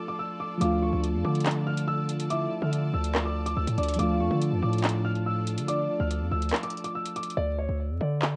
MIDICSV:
0, 0, Header, 1, 7, 480
1, 0, Start_track
1, 0, Key_signature, -1, "minor"
1, 0, Tempo, 422535
1, 694, Time_signature, 4, 2, 24, 8
1, 9499, End_track
2, 0, Start_track
2, 0, Title_t, "Grand piano"
2, 0, Program_c, 0, 0
2, 93, Note_on_c, 0, 86, 84
2, 199, Note_off_c, 0, 86, 0
2, 216, Note_on_c, 0, 88, 79
2, 427, Note_off_c, 0, 88, 0
2, 455, Note_on_c, 0, 86, 81
2, 666, Note_off_c, 0, 86, 0
2, 694, Note_on_c, 0, 86, 107
2, 906, Note_off_c, 0, 86, 0
2, 937, Note_on_c, 0, 85, 79
2, 1148, Note_off_c, 0, 85, 0
2, 1419, Note_on_c, 0, 86, 81
2, 1868, Note_off_c, 0, 86, 0
2, 1894, Note_on_c, 0, 89, 85
2, 2106, Note_off_c, 0, 89, 0
2, 2130, Note_on_c, 0, 88, 103
2, 2344, Note_off_c, 0, 88, 0
2, 2615, Note_on_c, 0, 86, 106
2, 2953, Note_off_c, 0, 86, 0
2, 2975, Note_on_c, 0, 89, 73
2, 3313, Note_off_c, 0, 89, 0
2, 3335, Note_on_c, 0, 88, 81
2, 3673, Note_off_c, 0, 88, 0
2, 3695, Note_on_c, 0, 86, 81
2, 3907, Note_off_c, 0, 86, 0
2, 3931, Note_on_c, 0, 86, 92
2, 4038, Note_off_c, 0, 86, 0
2, 4052, Note_on_c, 0, 88, 81
2, 4265, Note_off_c, 0, 88, 0
2, 4297, Note_on_c, 0, 86, 81
2, 4508, Note_off_c, 0, 86, 0
2, 4535, Note_on_c, 0, 86, 106
2, 4747, Note_off_c, 0, 86, 0
2, 4774, Note_on_c, 0, 85, 79
2, 4986, Note_off_c, 0, 85, 0
2, 5256, Note_on_c, 0, 86, 86
2, 5706, Note_off_c, 0, 86, 0
2, 5734, Note_on_c, 0, 89, 83
2, 5946, Note_off_c, 0, 89, 0
2, 5978, Note_on_c, 0, 88, 92
2, 6188, Note_off_c, 0, 88, 0
2, 6453, Note_on_c, 0, 86, 102
2, 6792, Note_off_c, 0, 86, 0
2, 6815, Note_on_c, 0, 89, 79
2, 7153, Note_off_c, 0, 89, 0
2, 7175, Note_on_c, 0, 88, 83
2, 7513, Note_off_c, 0, 88, 0
2, 7535, Note_on_c, 0, 86, 78
2, 7747, Note_off_c, 0, 86, 0
2, 7773, Note_on_c, 0, 86, 82
2, 7879, Note_off_c, 0, 86, 0
2, 7896, Note_on_c, 0, 88, 78
2, 8107, Note_off_c, 0, 88, 0
2, 8135, Note_on_c, 0, 86, 87
2, 8347, Note_off_c, 0, 86, 0
2, 8374, Note_on_c, 0, 74, 108
2, 8586, Note_off_c, 0, 74, 0
2, 8617, Note_on_c, 0, 73, 76
2, 8828, Note_off_c, 0, 73, 0
2, 9097, Note_on_c, 0, 74, 78
2, 9499, Note_off_c, 0, 74, 0
2, 9499, End_track
3, 0, Start_track
3, 0, Title_t, "Soft synth lead"
3, 0, Program_c, 1, 80
3, 697, Note_on_c, 1, 77, 108
3, 1147, Note_off_c, 1, 77, 0
3, 2615, Note_on_c, 1, 76, 115
3, 3066, Note_off_c, 1, 76, 0
3, 4293, Note_on_c, 1, 74, 78
3, 4522, Note_off_c, 1, 74, 0
3, 4534, Note_on_c, 1, 77, 100
3, 4985, Note_off_c, 1, 77, 0
3, 6454, Note_on_c, 1, 74, 114
3, 6905, Note_off_c, 1, 74, 0
3, 9499, End_track
4, 0, Start_track
4, 0, Title_t, "String section"
4, 0, Program_c, 2, 48
4, 0, Note_on_c, 2, 65, 83
4, 0, Note_on_c, 2, 69, 77
4, 0, Note_on_c, 2, 74, 77
4, 0, Note_on_c, 2, 81, 94
4, 648, Note_off_c, 2, 74, 0
4, 648, Note_off_c, 2, 81, 0
4, 694, Note_on_c, 2, 74, 77
4, 694, Note_on_c, 2, 81, 92
4, 4488, Note_off_c, 2, 65, 0
4, 4489, Note_off_c, 2, 69, 0
4, 4535, Note_on_c, 2, 65, 84
4, 4535, Note_on_c, 2, 69, 78
4, 8329, Note_off_c, 2, 74, 0
4, 8329, Note_off_c, 2, 81, 0
4, 8336, Note_off_c, 2, 65, 0
4, 8336, Note_off_c, 2, 69, 0
4, 9499, End_track
5, 0, Start_track
5, 0, Title_t, "Synth keys"
5, 0, Program_c, 3, 88
5, 0, Control_c, 3, 64, 127
5, 0, Note_on_c, 3, 53, 72
5, 0, Note_on_c, 3, 57, 61
5, 0, Note_on_c, 3, 62, 66
5, 0, Note_on_c, 3, 65, 78
5, 632, Note_off_c, 3, 53, 0
5, 645, Note_off_c, 3, 57, 0
5, 656, Note_on_c, 3, 53, 69
5, 657, Note_off_c, 3, 62, 0
5, 670, Note_off_c, 3, 65, 0
5, 680, Note_on_c, 3, 57, 63
5, 706, Note_on_c, 3, 62, 63
5, 708, Control_c, 3, 64, 0
5, 731, Note_on_c, 3, 65, 79
5, 916, Control_c, 3, 64, 127
5, 4470, Note_off_c, 3, 53, 0
5, 4482, Note_off_c, 3, 57, 0
5, 4495, Note_off_c, 3, 62, 0
5, 4500, Note_on_c, 3, 53, 72
5, 4507, Note_off_c, 3, 65, 0
5, 4525, Note_on_c, 3, 57, 62
5, 4549, Control_c, 3, 64, 0
5, 4550, Note_on_c, 3, 62, 67
5, 4575, Note_on_c, 3, 65, 75
5, 4727, Control_c, 3, 64, 127
5, 8312, Note_off_c, 3, 53, 0
5, 8324, Note_off_c, 3, 57, 0
5, 8337, Note_off_c, 3, 62, 0
5, 8349, Note_off_c, 3, 65, 0
5, 8390, Control_c, 3, 64, 0
5, 9499, End_track
6, 0, Start_track
6, 0, Title_t, "808-style bass"
6, 0, Program_c, 4, 38
6, 694, Note_on_c, 4, 38, 115
6, 1040, Note_off_c, 4, 38, 0
6, 1054, Note_on_c, 4, 38, 109
6, 1294, Note_on_c, 4, 41, 100
6, 1312, Note_off_c, 4, 38, 0
6, 1408, Note_off_c, 4, 41, 0
6, 1415, Note_on_c, 4, 50, 106
6, 2809, Note_off_c, 4, 50, 0
6, 2974, Note_on_c, 4, 50, 100
6, 3320, Note_off_c, 4, 50, 0
6, 3334, Note_on_c, 4, 38, 104
6, 4026, Note_off_c, 4, 38, 0
6, 4054, Note_on_c, 4, 38, 105
6, 4169, Note_off_c, 4, 38, 0
6, 4174, Note_on_c, 4, 45, 100
6, 4290, Note_off_c, 4, 45, 0
6, 4295, Note_on_c, 4, 38, 104
6, 4525, Note_off_c, 4, 38, 0
6, 4535, Note_on_c, 4, 38, 108
6, 4774, Note_on_c, 4, 41, 95
6, 4791, Note_off_c, 4, 38, 0
6, 4888, Note_off_c, 4, 41, 0
6, 4894, Note_on_c, 4, 50, 108
6, 5134, Note_on_c, 4, 41, 102
6, 5152, Note_off_c, 4, 50, 0
6, 5248, Note_off_c, 4, 41, 0
6, 5255, Note_on_c, 4, 45, 106
6, 6335, Note_on_c, 4, 50, 100
6, 6352, Note_off_c, 4, 45, 0
6, 6677, Note_off_c, 4, 50, 0
6, 6814, Note_on_c, 4, 38, 110
6, 7055, Note_on_c, 4, 41, 99
6, 7072, Note_off_c, 4, 38, 0
6, 7169, Note_off_c, 4, 41, 0
6, 7174, Note_on_c, 4, 38, 102
6, 7404, Note_off_c, 4, 38, 0
6, 8374, Note_on_c, 4, 38, 114
6, 8720, Note_off_c, 4, 38, 0
6, 8734, Note_on_c, 4, 38, 104
6, 8974, Note_on_c, 4, 41, 99
6, 8991, Note_off_c, 4, 38, 0
6, 9088, Note_off_c, 4, 41, 0
6, 9095, Note_on_c, 4, 50, 99
6, 9499, Note_off_c, 4, 50, 0
6, 9499, End_track
7, 0, Start_track
7, 0, Title_t, "Drums"
7, 694, Note_on_c, 9, 42, 88
7, 808, Note_off_c, 9, 42, 0
7, 1177, Note_on_c, 9, 42, 78
7, 1290, Note_off_c, 9, 42, 0
7, 1535, Note_on_c, 9, 42, 43
7, 1595, Note_off_c, 9, 42, 0
7, 1595, Note_on_c, 9, 42, 52
7, 1655, Note_off_c, 9, 42, 0
7, 1655, Note_on_c, 9, 39, 118
7, 1655, Note_on_c, 9, 42, 64
7, 1715, Note_off_c, 9, 42, 0
7, 1715, Note_on_c, 9, 42, 76
7, 1769, Note_off_c, 9, 39, 0
7, 1828, Note_off_c, 9, 42, 0
7, 2014, Note_on_c, 9, 42, 75
7, 2127, Note_off_c, 9, 42, 0
7, 2372, Note_on_c, 9, 42, 84
7, 2486, Note_off_c, 9, 42, 0
7, 2494, Note_on_c, 9, 42, 85
7, 2608, Note_off_c, 9, 42, 0
7, 2615, Note_on_c, 9, 42, 86
7, 2729, Note_off_c, 9, 42, 0
7, 3097, Note_on_c, 9, 42, 75
7, 3210, Note_off_c, 9, 42, 0
7, 3453, Note_on_c, 9, 42, 68
7, 3566, Note_off_c, 9, 42, 0
7, 3575, Note_on_c, 9, 37, 93
7, 3575, Note_on_c, 9, 39, 118
7, 3689, Note_off_c, 9, 37, 0
7, 3689, Note_off_c, 9, 39, 0
7, 3935, Note_on_c, 9, 42, 75
7, 4048, Note_off_c, 9, 42, 0
7, 4176, Note_on_c, 9, 42, 84
7, 4290, Note_off_c, 9, 42, 0
7, 4295, Note_on_c, 9, 42, 48
7, 4355, Note_off_c, 9, 42, 0
7, 4355, Note_on_c, 9, 42, 59
7, 4416, Note_off_c, 9, 42, 0
7, 4416, Note_on_c, 9, 42, 73
7, 4475, Note_off_c, 9, 42, 0
7, 4475, Note_on_c, 9, 42, 87
7, 4535, Note_off_c, 9, 42, 0
7, 4535, Note_on_c, 9, 42, 89
7, 4649, Note_off_c, 9, 42, 0
7, 5017, Note_on_c, 9, 42, 78
7, 5131, Note_off_c, 9, 42, 0
7, 5375, Note_on_c, 9, 42, 42
7, 5435, Note_off_c, 9, 42, 0
7, 5435, Note_on_c, 9, 42, 53
7, 5495, Note_off_c, 9, 42, 0
7, 5495, Note_on_c, 9, 39, 114
7, 5495, Note_on_c, 9, 42, 67
7, 5555, Note_off_c, 9, 42, 0
7, 5555, Note_on_c, 9, 42, 75
7, 5609, Note_off_c, 9, 39, 0
7, 5668, Note_off_c, 9, 42, 0
7, 5854, Note_on_c, 9, 42, 75
7, 5968, Note_off_c, 9, 42, 0
7, 6213, Note_on_c, 9, 42, 86
7, 6326, Note_off_c, 9, 42, 0
7, 6335, Note_on_c, 9, 42, 86
7, 6448, Note_off_c, 9, 42, 0
7, 6455, Note_on_c, 9, 42, 83
7, 6569, Note_off_c, 9, 42, 0
7, 6937, Note_on_c, 9, 42, 78
7, 7051, Note_off_c, 9, 42, 0
7, 7294, Note_on_c, 9, 42, 59
7, 7374, Note_off_c, 9, 42, 0
7, 7374, Note_on_c, 9, 42, 59
7, 7415, Note_on_c, 9, 37, 95
7, 7415, Note_on_c, 9, 39, 112
7, 7454, Note_off_c, 9, 42, 0
7, 7454, Note_on_c, 9, 42, 60
7, 7528, Note_off_c, 9, 37, 0
7, 7528, Note_off_c, 9, 39, 0
7, 7534, Note_off_c, 9, 42, 0
7, 7534, Note_on_c, 9, 42, 64
7, 7614, Note_off_c, 9, 42, 0
7, 7614, Note_on_c, 9, 42, 61
7, 7694, Note_off_c, 9, 42, 0
7, 7694, Note_on_c, 9, 42, 59
7, 7774, Note_off_c, 9, 42, 0
7, 7774, Note_on_c, 9, 42, 73
7, 7888, Note_off_c, 9, 42, 0
7, 8016, Note_on_c, 9, 42, 82
7, 8129, Note_off_c, 9, 42, 0
7, 8135, Note_on_c, 9, 42, 67
7, 8215, Note_off_c, 9, 42, 0
7, 8215, Note_on_c, 9, 42, 66
7, 8295, Note_off_c, 9, 42, 0
7, 8295, Note_on_c, 9, 42, 68
7, 8408, Note_off_c, 9, 42, 0
7, 9335, Note_on_c, 9, 39, 113
7, 9448, Note_off_c, 9, 39, 0
7, 9499, End_track
0, 0, End_of_file